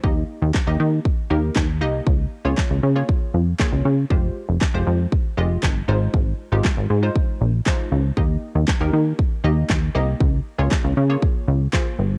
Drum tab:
CP |--x---x-|--x---x-|--x---x-|--x---x-|
SD |--o---o-|--o---o-|--o---o-|--o---o-|
BD |o-o-o-o-|o-o-o-o-|o-o-o-o-|o-o-o-o-|

CP |--x---x-|--x---x-|
SD |--o---o-|--o---o-|
BD |o-o-o-o-|o-o-o-o-|